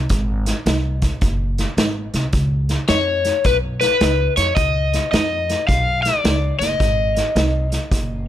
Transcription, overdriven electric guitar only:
2.89 C#5
3.46 B4
3.81 B4
4.37 C#5
4.55 D#5
5.11 D#5
5.67 F5
6.03 D5
6.59 D#5

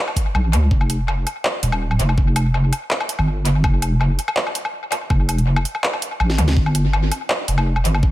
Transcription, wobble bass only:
0.34 A#1
0.53 D2
0.71 F1
1.63 D#1
2.00 F1
2.18 F1
3.19 G1
3.64 F1
5.10 F1
6.20 A1
6.38 D2
6.57 G1
7.48 F1
7.84 G1
8.03 G1

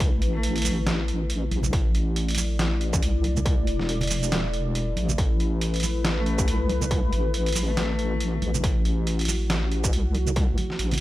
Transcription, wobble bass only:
Already playing: C2
0.22 A1
1.51 A1
1.73 A1
3.02 C2
3.67 E1
4.97 A1
5.18 A1
6.48 C2
7.13 A1
8.42 A1
8.64 A1
9.93 C2
10.79 A1

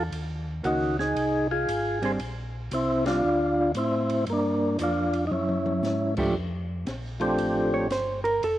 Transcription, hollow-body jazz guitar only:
0.64 D#3 A#3 C#4 F#4
2.02 G3 C4 D4
3.05 G3 C4 D4
4.80 F3 A#3 D4
6.17 F3 A3 D4 G4
7.74 C#5
7.92 C5
8.24 A#4
8.44 A4

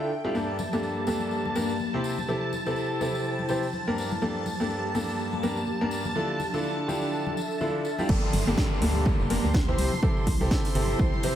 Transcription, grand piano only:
0.25 G3 D4 E4 F4 G4
0.35 G2 A#3 D4 G4 A4
0.73 G2 A#3 D4 G4 A4
1.07 G2 A#3 D4 G4 A4
1.56 G2 A#3 D4 G4 A#4
1.94 C3 C4 E4 G4 C5
2.28 C3 C4 E4 G4 A4
2.66 C3 C4 E4 G4 A4
3.01 C3 C4 E4 G4 A4
3.49 C3 C4 E4 G4 C5
3.87 G2 A#3 D4 G4 A#4
4.22 G2 A#3 D4 G4 A4
4.60 G2 A#3 D4 G4 A4
4.95 G2 A#3 D4 G4 A4
5.43 G2 A#3 D4 G4 A#4
5.81 G2 A#3 D4 G4 A#4
6.16 D3 D4 E4 F4 A4
6.54 D3 D4 E4 F4 A4
6.88 D3 D4 E4 F4 G4
7.61 D3 D4 E4 F4 A4
7.99 G3 D4 E4 F4 G4
8.09 G2 A#3 D4 G4 A4
8.47 G2 A#3 D4 G4 A4
8.82 G2 A#3 D4 G4 A4
9.30 G2 A#3 D4 G4 A#4
9.68 C3 C4 E4 G4 C5
10.03 C3 C4 E4 G4 A4
10.41 C3 C4 E4 G4 A4
10.75 C3 C4 E4 G4 A4
11.24 C3 C4 E4 G4 C5

